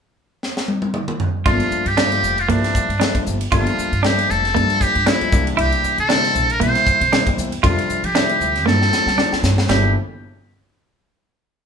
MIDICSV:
0, 0, Header, 1, 7, 480
1, 0, Start_track
1, 0, Tempo, 515021
1, 1358, Time_signature, 4, 2, 24, 8
1, 10863, End_track
2, 0, Start_track
2, 0, Title_t, "Muted trumpet"
2, 0, Program_c, 0, 59
2, 1366, Note_on_c, 0, 65, 82
2, 1746, Note_on_c, 0, 67, 96
2, 1760, Note_off_c, 0, 65, 0
2, 2238, Note_on_c, 0, 65, 75
2, 2252, Note_off_c, 0, 67, 0
2, 2332, Note_off_c, 0, 65, 0
2, 2338, Note_on_c, 0, 62, 68
2, 3011, Note_off_c, 0, 62, 0
2, 3297, Note_on_c, 0, 65, 72
2, 3778, Note_on_c, 0, 67, 81
2, 3792, Note_off_c, 0, 65, 0
2, 4013, Note_on_c, 0, 69, 78
2, 4027, Note_off_c, 0, 67, 0
2, 4497, Note_on_c, 0, 67, 86
2, 4511, Note_off_c, 0, 69, 0
2, 4731, Note_on_c, 0, 64, 81
2, 4745, Note_off_c, 0, 67, 0
2, 5097, Note_off_c, 0, 64, 0
2, 5221, Note_on_c, 0, 67, 81
2, 5557, Note_off_c, 0, 67, 0
2, 5592, Note_on_c, 0, 69, 91
2, 6073, Note_on_c, 0, 70, 82
2, 6087, Note_off_c, 0, 69, 0
2, 6169, Note_off_c, 0, 70, 0
2, 6177, Note_on_c, 0, 72, 92
2, 6849, Note_off_c, 0, 72, 0
2, 7132, Note_on_c, 0, 65, 70
2, 7502, Note_on_c, 0, 67, 85
2, 7516, Note_off_c, 0, 65, 0
2, 8078, Note_off_c, 0, 67, 0
2, 8083, Note_on_c, 0, 69, 89
2, 8763, Note_off_c, 0, 69, 0
2, 9029, Note_on_c, 0, 67, 68
2, 9256, Note_off_c, 0, 67, 0
2, 10863, End_track
3, 0, Start_track
3, 0, Title_t, "Clean electric guitar"
3, 0, Program_c, 1, 27
3, 1358, Note_on_c, 1, 65, 74
3, 1485, Note_off_c, 1, 65, 0
3, 1838, Note_on_c, 1, 62, 78
3, 1965, Note_off_c, 1, 62, 0
3, 2316, Note_on_c, 1, 58, 80
3, 2444, Note_off_c, 1, 58, 0
3, 2792, Note_on_c, 1, 62, 74
3, 2921, Note_off_c, 1, 62, 0
3, 3279, Note_on_c, 1, 65, 83
3, 3406, Note_off_c, 1, 65, 0
3, 3755, Note_on_c, 1, 62, 78
3, 3883, Note_off_c, 1, 62, 0
3, 4237, Note_on_c, 1, 58, 78
3, 4364, Note_off_c, 1, 58, 0
3, 4720, Note_on_c, 1, 62, 72
3, 4846, Note_off_c, 1, 62, 0
3, 5192, Note_on_c, 1, 64, 83
3, 5321, Note_off_c, 1, 64, 0
3, 5675, Note_on_c, 1, 62, 77
3, 5802, Note_off_c, 1, 62, 0
3, 6151, Note_on_c, 1, 58, 80
3, 6280, Note_off_c, 1, 58, 0
3, 6641, Note_on_c, 1, 62, 78
3, 6766, Note_off_c, 1, 62, 0
3, 7112, Note_on_c, 1, 65, 84
3, 7240, Note_off_c, 1, 65, 0
3, 7595, Note_on_c, 1, 62, 79
3, 7722, Note_off_c, 1, 62, 0
3, 8068, Note_on_c, 1, 58, 84
3, 8197, Note_off_c, 1, 58, 0
3, 8555, Note_on_c, 1, 62, 74
3, 8682, Note_off_c, 1, 62, 0
3, 9034, Note_on_c, 1, 55, 74
3, 9179, Note_off_c, 1, 55, 0
3, 10863, End_track
4, 0, Start_track
4, 0, Title_t, "Grand piano"
4, 0, Program_c, 2, 0
4, 1360, Note_on_c, 2, 46, 74
4, 1360, Note_on_c, 2, 53, 65
4, 1360, Note_on_c, 2, 57, 68
4, 1362, Note_on_c, 2, 55, 62
4, 1362, Note_on_c, 2, 62, 85
4, 1706, Note_off_c, 2, 46, 0
4, 1706, Note_off_c, 2, 53, 0
4, 1706, Note_off_c, 2, 57, 0
4, 1707, Note_off_c, 2, 55, 0
4, 1708, Note_off_c, 2, 62, 0
4, 1836, Note_on_c, 2, 53, 55
4, 1837, Note_on_c, 2, 46, 61
4, 1838, Note_on_c, 2, 55, 53
4, 1840, Note_on_c, 2, 57, 51
4, 1841, Note_on_c, 2, 65, 66
4, 2184, Note_off_c, 2, 53, 0
4, 2185, Note_off_c, 2, 46, 0
4, 2185, Note_off_c, 2, 55, 0
4, 2186, Note_off_c, 2, 57, 0
4, 2187, Note_off_c, 2, 65, 0
4, 2316, Note_on_c, 2, 46, 66
4, 2320, Note_on_c, 2, 55, 66
4, 2320, Note_on_c, 2, 57, 59
4, 2320, Note_on_c, 2, 64, 80
4, 2321, Note_on_c, 2, 53, 65
4, 2665, Note_off_c, 2, 46, 0
4, 2666, Note_off_c, 2, 55, 0
4, 2666, Note_off_c, 2, 57, 0
4, 2667, Note_off_c, 2, 53, 0
4, 2667, Note_off_c, 2, 64, 0
4, 2796, Note_on_c, 2, 46, 60
4, 2796, Note_on_c, 2, 53, 64
4, 2797, Note_on_c, 2, 55, 60
4, 2798, Note_on_c, 2, 57, 60
4, 2798, Note_on_c, 2, 62, 68
4, 3144, Note_off_c, 2, 46, 0
4, 3144, Note_off_c, 2, 53, 0
4, 3145, Note_off_c, 2, 55, 0
4, 3146, Note_off_c, 2, 57, 0
4, 3146, Note_off_c, 2, 62, 0
4, 3279, Note_on_c, 2, 46, 77
4, 3280, Note_on_c, 2, 55, 69
4, 3281, Note_on_c, 2, 53, 65
4, 3282, Note_on_c, 2, 57, 70
4, 3284, Note_on_c, 2, 62, 76
4, 3626, Note_off_c, 2, 46, 0
4, 3627, Note_off_c, 2, 53, 0
4, 3627, Note_off_c, 2, 55, 0
4, 3627, Note_off_c, 2, 57, 0
4, 3628, Note_off_c, 2, 62, 0
4, 3762, Note_on_c, 2, 46, 60
4, 3764, Note_on_c, 2, 57, 58
4, 3766, Note_on_c, 2, 53, 56
4, 3767, Note_on_c, 2, 55, 55
4, 3769, Note_on_c, 2, 62, 64
4, 4107, Note_off_c, 2, 46, 0
4, 4109, Note_off_c, 2, 53, 0
4, 4109, Note_off_c, 2, 57, 0
4, 4110, Note_off_c, 2, 55, 0
4, 4111, Note_off_c, 2, 62, 0
4, 4245, Note_on_c, 2, 53, 57
4, 4246, Note_on_c, 2, 46, 70
4, 4246, Note_on_c, 2, 62, 74
4, 4247, Note_on_c, 2, 55, 63
4, 4247, Note_on_c, 2, 57, 62
4, 4589, Note_off_c, 2, 46, 0
4, 4589, Note_off_c, 2, 53, 0
4, 4589, Note_off_c, 2, 62, 0
4, 4590, Note_off_c, 2, 55, 0
4, 4590, Note_off_c, 2, 57, 0
4, 4720, Note_on_c, 2, 46, 65
4, 4720, Note_on_c, 2, 53, 62
4, 4720, Note_on_c, 2, 55, 63
4, 4723, Note_on_c, 2, 57, 61
4, 4724, Note_on_c, 2, 60, 76
4, 4952, Note_off_c, 2, 55, 0
4, 4959, Note_off_c, 2, 46, 0
4, 4959, Note_off_c, 2, 53, 0
4, 4961, Note_off_c, 2, 57, 0
4, 4961, Note_off_c, 2, 60, 0
4, 4966, Note_on_c, 2, 48, 77
4, 4966, Note_on_c, 2, 55, 64
4, 4967, Note_on_c, 2, 52, 68
4, 4968, Note_on_c, 2, 58, 62
4, 4968, Note_on_c, 2, 62, 79
4, 5548, Note_off_c, 2, 48, 0
4, 5548, Note_off_c, 2, 55, 0
4, 5549, Note_off_c, 2, 52, 0
4, 5549, Note_off_c, 2, 58, 0
4, 5549, Note_off_c, 2, 62, 0
4, 5677, Note_on_c, 2, 48, 64
4, 5680, Note_on_c, 2, 52, 58
4, 5680, Note_on_c, 2, 55, 57
4, 5682, Note_on_c, 2, 60, 73
4, 5683, Note_on_c, 2, 58, 55
4, 6024, Note_off_c, 2, 48, 0
4, 6025, Note_off_c, 2, 55, 0
4, 6026, Note_off_c, 2, 52, 0
4, 6027, Note_off_c, 2, 58, 0
4, 6027, Note_off_c, 2, 60, 0
4, 6159, Note_on_c, 2, 48, 69
4, 6162, Note_on_c, 2, 52, 65
4, 6163, Note_on_c, 2, 55, 65
4, 6164, Note_on_c, 2, 64, 77
4, 6165, Note_on_c, 2, 58, 57
4, 6505, Note_off_c, 2, 48, 0
4, 6506, Note_off_c, 2, 52, 0
4, 6507, Note_off_c, 2, 55, 0
4, 6508, Note_off_c, 2, 58, 0
4, 6508, Note_off_c, 2, 64, 0
4, 6641, Note_on_c, 2, 48, 71
4, 6641, Note_on_c, 2, 58, 58
4, 6642, Note_on_c, 2, 52, 63
4, 6642, Note_on_c, 2, 55, 63
4, 6644, Note_on_c, 2, 60, 72
4, 6986, Note_off_c, 2, 48, 0
4, 6986, Note_off_c, 2, 52, 0
4, 6986, Note_off_c, 2, 55, 0
4, 6986, Note_off_c, 2, 58, 0
4, 6988, Note_off_c, 2, 60, 0
4, 7114, Note_on_c, 2, 48, 71
4, 7115, Note_on_c, 2, 55, 69
4, 7118, Note_on_c, 2, 53, 73
4, 7118, Note_on_c, 2, 57, 68
4, 7120, Note_on_c, 2, 62, 81
4, 7462, Note_off_c, 2, 48, 0
4, 7463, Note_off_c, 2, 55, 0
4, 7464, Note_off_c, 2, 53, 0
4, 7464, Note_off_c, 2, 57, 0
4, 7466, Note_off_c, 2, 62, 0
4, 7595, Note_on_c, 2, 48, 60
4, 7596, Note_on_c, 2, 53, 54
4, 7596, Note_on_c, 2, 57, 57
4, 7597, Note_on_c, 2, 55, 60
4, 7600, Note_on_c, 2, 64, 67
4, 7943, Note_off_c, 2, 48, 0
4, 7943, Note_off_c, 2, 53, 0
4, 7943, Note_off_c, 2, 57, 0
4, 7944, Note_off_c, 2, 55, 0
4, 7945, Note_off_c, 2, 64, 0
4, 8074, Note_on_c, 2, 55, 64
4, 8076, Note_on_c, 2, 46, 71
4, 8078, Note_on_c, 2, 52, 56
4, 8079, Note_on_c, 2, 62, 79
4, 8080, Note_on_c, 2, 57, 64
4, 8423, Note_off_c, 2, 46, 0
4, 8423, Note_off_c, 2, 55, 0
4, 8424, Note_off_c, 2, 52, 0
4, 8425, Note_off_c, 2, 57, 0
4, 8425, Note_off_c, 2, 62, 0
4, 8549, Note_on_c, 2, 46, 65
4, 8551, Note_on_c, 2, 52, 62
4, 8552, Note_on_c, 2, 55, 57
4, 8554, Note_on_c, 2, 57, 56
4, 8554, Note_on_c, 2, 62, 67
4, 8900, Note_off_c, 2, 46, 0
4, 8901, Note_off_c, 2, 52, 0
4, 8901, Note_off_c, 2, 55, 0
4, 8902, Note_off_c, 2, 57, 0
4, 8902, Note_off_c, 2, 62, 0
4, 9035, Note_on_c, 2, 52, 68
4, 9036, Note_on_c, 2, 46, 74
4, 9039, Note_on_c, 2, 57, 69
4, 9039, Note_on_c, 2, 62, 81
4, 9040, Note_on_c, 2, 55, 64
4, 9259, Note_off_c, 2, 52, 0
4, 9260, Note_off_c, 2, 46, 0
4, 9261, Note_off_c, 2, 57, 0
4, 9262, Note_off_c, 2, 55, 0
4, 9262, Note_off_c, 2, 62, 0
4, 10863, End_track
5, 0, Start_track
5, 0, Title_t, "Upright bass"
5, 0, Program_c, 3, 32
5, 1358, Note_on_c, 3, 31, 94
5, 1464, Note_off_c, 3, 31, 0
5, 1731, Note_on_c, 3, 43, 70
5, 2008, Note_off_c, 3, 43, 0
5, 2076, Note_on_c, 3, 29, 71
5, 2319, Note_on_c, 3, 43, 78
5, 2333, Note_off_c, 3, 29, 0
5, 2511, Note_off_c, 3, 43, 0
5, 2691, Note_on_c, 3, 43, 81
5, 2777, Note_off_c, 3, 43, 0
5, 3047, Note_on_c, 3, 31, 75
5, 3235, Note_off_c, 3, 31, 0
5, 3278, Note_on_c, 3, 31, 86
5, 3385, Note_off_c, 3, 31, 0
5, 3655, Note_on_c, 3, 43, 69
5, 3931, Note_off_c, 3, 43, 0
5, 4001, Note_on_c, 3, 29, 76
5, 4245, Note_on_c, 3, 43, 79
5, 4258, Note_off_c, 3, 29, 0
5, 4434, Note_off_c, 3, 43, 0
5, 4618, Note_on_c, 3, 43, 85
5, 4701, Note_off_c, 3, 43, 0
5, 4962, Note_on_c, 3, 36, 84
5, 5152, Note_off_c, 3, 36, 0
5, 5196, Note_on_c, 3, 36, 87
5, 5303, Note_off_c, 3, 36, 0
5, 5570, Note_on_c, 3, 48, 77
5, 5847, Note_off_c, 3, 48, 0
5, 5916, Note_on_c, 3, 34, 73
5, 6157, Note_on_c, 3, 48, 90
5, 6171, Note_off_c, 3, 34, 0
5, 6349, Note_off_c, 3, 48, 0
5, 6531, Note_on_c, 3, 48, 82
5, 6616, Note_off_c, 3, 48, 0
5, 6875, Note_on_c, 3, 40, 81
5, 7068, Note_off_c, 3, 40, 0
5, 7117, Note_on_c, 3, 41, 88
5, 7223, Note_off_c, 3, 41, 0
5, 7487, Note_on_c, 3, 53, 75
5, 7765, Note_off_c, 3, 53, 0
5, 7834, Note_on_c, 3, 38, 74
5, 8076, Note_off_c, 3, 38, 0
5, 8076, Note_on_c, 3, 43, 82
5, 8268, Note_off_c, 3, 43, 0
5, 8445, Note_on_c, 3, 55, 80
5, 8532, Note_off_c, 3, 55, 0
5, 8789, Note_on_c, 3, 43, 82
5, 8984, Note_off_c, 3, 43, 0
5, 9028, Note_on_c, 3, 31, 85
5, 9256, Note_off_c, 3, 31, 0
5, 10863, End_track
6, 0, Start_track
6, 0, Title_t, "Muted upright bass strokes"
6, 1595, Note_on_c, 9, 29, 35
6, 1688, Note_off_c, 9, 29, 0
6, 2935, Note_on_c, 9, 29, 30
6, 3028, Note_off_c, 9, 29, 0
6, 3524, Note_on_c, 9, 29, 36
6, 3617, Note_off_c, 9, 29, 0
6, 4854, Note_on_c, 9, 29, 32
6, 4948, Note_off_c, 9, 29, 0
6, 5439, Note_on_c, 9, 29, 37
6, 5532, Note_off_c, 9, 29, 0
6, 6770, Note_on_c, 9, 29, 33
6, 6863, Note_off_c, 9, 29, 0
6, 7359, Note_on_c, 9, 29, 35
6, 7452, Note_off_c, 9, 29, 0
6, 8691, Note_on_c, 9, 29, 30
6, 8784, Note_off_c, 9, 29, 0
6, 10863, End_track
7, 0, Start_track
7, 0, Title_t, "Drums"
7, 402, Note_on_c, 9, 38, 54
7, 495, Note_off_c, 9, 38, 0
7, 532, Note_on_c, 9, 38, 68
7, 625, Note_off_c, 9, 38, 0
7, 635, Note_on_c, 9, 48, 70
7, 728, Note_off_c, 9, 48, 0
7, 764, Note_on_c, 9, 48, 70
7, 857, Note_off_c, 9, 48, 0
7, 874, Note_on_c, 9, 47, 72
7, 968, Note_off_c, 9, 47, 0
7, 1006, Note_on_c, 9, 47, 78
7, 1100, Note_off_c, 9, 47, 0
7, 1117, Note_on_c, 9, 43, 82
7, 1210, Note_off_c, 9, 43, 0
7, 1358, Note_on_c, 9, 36, 97
7, 1359, Note_on_c, 9, 51, 69
7, 1451, Note_off_c, 9, 36, 0
7, 1452, Note_off_c, 9, 51, 0
7, 1490, Note_on_c, 9, 51, 56
7, 1583, Note_off_c, 9, 51, 0
7, 1598, Note_on_c, 9, 44, 67
7, 1691, Note_off_c, 9, 44, 0
7, 1732, Note_on_c, 9, 51, 57
7, 1825, Note_off_c, 9, 51, 0
7, 1839, Note_on_c, 9, 51, 79
7, 1844, Note_on_c, 9, 38, 98
7, 1933, Note_off_c, 9, 51, 0
7, 1937, Note_off_c, 9, 38, 0
7, 1974, Note_on_c, 9, 51, 52
7, 2067, Note_off_c, 9, 51, 0
7, 2083, Note_on_c, 9, 44, 73
7, 2177, Note_off_c, 9, 44, 0
7, 2217, Note_on_c, 9, 51, 52
7, 2310, Note_off_c, 9, 51, 0
7, 2324, Note_on_c, 9, 51, 72
7, 2418, Note_off_c, 9, 51, 0
7, 2463, Note_on_c, 9, 51, 61
7, 2467, Note_on_c, 9, 38, 27
7, 2556, Note_off_c, 9, 51, 0
7, 2560, Note_off_c, 9, 38, 0
7, 2562, Note_on_c, 9, 36, 68
7, 2567, Note_on_c, 9, 44, 87
7, 2655, Note_off_c, 9, 36, 0
7, 2660, Note_off_c, 9, 44, 0
7, 2702, Note_on_c, 9, 51, 50
7, 2796, Note_off_c, 9, 51, 0
7, 2805, Note_on_c, 9, 51, 75
7, 2810, Note_on_c, 9, 38, 98
7, 2898, Note_off_c, 9, 51, 0
7, 2903, Note_off_c, 9, 38, 0
7, 2934, Note_on_c, 9, 36, 66
7, 2938, Note_on_c, 9, 51, 58
7, 3028, Note_off_c, 9, 36, 0
7, 3031, Note_off_c, 9, 51, 0
7, 3044, Note_on_c, 9, 44, 74
7, 3137, Note_off_c, 9, 44, 0
7, 3176, Note_on_c, 9, 51, 68
7, 3269, Note_off_c, 9, 51, 0
7, 3281, Note_on_c, 9, 36, 99
7, 3283, Note_on_c, 9, 51, 76
7, 3374, Note_off_c, 9, 36, 0
7, 3376, Note_off_c, 9, 51, 0
7, 3417, Note_on_c, 9, 51, 55
7, 3510, Note_off_c, 9, 51, 0
7, 3530, Note_on_c, 9, 44, 78
7, 3623, Note_off_c, 9, 44, 0
7, 3660, Note_on_c, 9, 51, 56
7, 3754, Note_off_c, 9, 51, 0
7, 3767, Note_on_c, 9, 51, 66
7, 3772, Note_on_c, 9, 38, 88
7, 3860, Note_off_c, 9, 51, 0
7, 3865, Note_off_c, 9, 38, 0
7, 3902, Note_on_c, 9, 51, 54
7, 3995, Note_off_c, 9, 51, 0
7, 4012, Note_on_c, 9, 44, 74
7, 4105, Note_off_c, 9, 44, 0
7, 4147, Note_on_c, 9, 51, 52
7, 4151, Note_on_c, 9, 38, 26
7, 4240, Note_off_c, 9, 51, 0
7, 4245, Note_off_c, 9, 38, 0
7, 4253, Note_on_c, 9, 51, 69
7, 4346, Note_off_c, 9, 51, 0
7, 4379, Note_on_c, 9, 51, 50
7, 4472, Note_off_c, 9, 51, 0
7, 4482, Note_on_c, 9, 36, 67
7, 4486, Note_on_c, 9, 44, 81
7, 4576, Note_off_c, 9, 36, 0
7, 4579, Note_off_c, 9, 44, 0
7, 4615, Note_on_c, 9, 51, 48
7, 4709, Note_off_c, 9, 51, 0
7, 4719, Note_on_c, 9, 51, 70
7, 4724, Note_on_c, 9, 38, 102
7, 4813, Note_off_c, 9, 51, 0
7, 4817, Note_off_c, 9, 38, 0
7, 4857, Note_on_c, 9, 51, 50
7, 4951, Note_off_c, 9, 51, 0
7, 4963, Note_on_c, 9, 36, 91
7, 4965, Note_on_c, 9, 44, 78
7, 5056, Note_off_c, 9, 36, 0
7, 5058, Note_off_c, 9, 44, 0
7, 5097, Note_on_c, 9, 51, 61
7, 5191, Note_off_c, 9, 51, 0
7, 5205, Note_on_c, 9, 51, 78
7, 5298, Note_off_c, 9, 51, 0
7, 5334, Note_on_c, 9, 51, 55
7, 5427, Note_off_c, 9, 51, 0
7, 5444, Note_on_c, 9, 44, 84
7, 5537, Note_off_c, 9, 44, 0
7, 5575, Note_on_c, 9, 51, 58
7, 5668, Note_off_c, 9, 51, 0
7, 5681, Note_on_c, 9, 51, 72
7, 5685, Note_on_c, 9, 38, 98
7, 5774, Note_off_c, 9, 51, 0
7, 5778, Note_off_c, 9, 38, 0
7, 5819, Note_on_c, 9, 51, 57
7, 5824, Note_on_c, 9, 38, 27
7, 5912, Note_off_c, 9, 51, 0
7, 5917, Note_off_c, 9, 38, 0
7, 5920, Note_on_c, 9, 44, 77
7, 6013, Note_off_c, 9, 44, 0
7, 6055, Note_on_c, 9, 51, 53
7, 6149, Note_off_c, 9, 51, 0
7, 6163, Note_on_c, 9, 51, 79
7, 6256, Note_off_c, 9, 51, 0
7, 6294, Note_on_c, 9, 51, 56
7, 6298, Note_on_c, 9, 38, 31
7, 6387, Note_off_c, 9, 51, 0
7, 6392, Note_off_c, 9, 38, 0
7, 6399, Note_on_c, 9, 36, 75
7, 6399, Note_on_c, 9, 44, 78
7, 6492, Note_off_c, 9, 36, 0
7, 6493, Note_off_c, 9, 44, 0
7, 6536, Note_on_c, 9, 51, 60
7, 6629, Note_off_c, 9, 51, 0
7, 6641, Note_on_c, 9, 51, 75
7, 6646, Note_on_c, 9, 38, 107
7, 6734, Note_off_c, 9, 51, 0
7, 6739, Note_off_c, 9, 38, 0
7, 6772, Note_on_c, 9, 36, 73
7, 6774, Note_on_c, 9, 51, 61
7, 6865, Note_off_c, 9, 36, 0
7, 6867, Note_off_c, 9, 51, 0
7, 6881, Note_on_c, 9, 44, 74
7, 6974, Note_off_c, 9, 44, 0
7, 7011, Note_on_c, 9, 51, 62
7, 7104, Note_off_c, 9, 51, 0
7, 7118, Note_on_c, 9, 36, 94
7, 7121, Note_on_c, 9, 51, 81
7, 7211, Note_off_c, 9, 36, 0
7, 7214, Note_off_c, 9, 51, 0
7, 7255, Note_on_c, 9, 51, 57
7, 7348, Note_off_c, 9, 51, 0
7, 7359, Note_on_c, 9, 44, 71
7, 7452, Note_off_c, 9, 44, 0
7, 7491, Note_on_c, 9, 51, 58
7, 7584, Note_off_c, 9, 51, 0
7, 7597, Note_on_c, 9, 51, 72
7, 7602, Note_on_c, 9, 38, 96
7, 7690, Note_off_c, 9, 51, 0
7, 7695, Note_off_c, 9, 38, 0
7, 7730, Note_on_c, 9, 51, 53
7, 7823, Note_off_c, 9, 51, 0
7, 7836, Note_on_c, 9, 44, 72
7, 7929, Note_off_c, 9, 44, 0
7, 7974, Note_on_c, 9, 51, 52
7, 7978, Note_on_c, 9, 38, 27
7, 8067, Note_off_c, 9, 51, 0
7, 8072, Note_off_c, 9, 38, 0
7, 8086, Note_on_c, 9, 38, 53
7, 8179, Note_off_c, 9, 38, 0
7, 8217, Note_on_c, 9, 38, 46
7, 8311, Note_off_c, 9, 38, 0
7, 8319, Note_on_c, 9, 44, 81
7, 8324, Note_on_c, 9, 38, 65
7, 8413, Note_off_c, 9, 44, 0
7, 8417, Note_off_c, 9, 38, 0
7, 8457, Note_on_c, 9, 38, 57
7, 8550, Note_off_c, 9, 38, 0
7, 8560, Note_on_c, 9, 38, 71
7, 8653, Note_off_c, 9, 38, 0
7, 8692, Note_on_c, 9, 38, 65
7, 8785, Note_off_c, 9, 38, 0
7, 8792, Note_on_c, 9, 44, 73
7, 8797, Note_on_c, 9, 38, 85
7, 8885, Note_off_c, 9, 44, 0
7, 8890, Note_off_c, 9, 38, 0
7, 8930, Note_on_c, 9, 38, 84
7, 9024, Note_off_c, 9, 38, 0
7, 9034, Note_on_c, 9, 53, 78
7, 9038, Note_on_c, 9, 38, 88
7, 9127, Note_off_c, 9, 53, 0
7, 9132, Note_off_c, 9, 38, 0
7, 10863, End_track
0, 0, End_of_file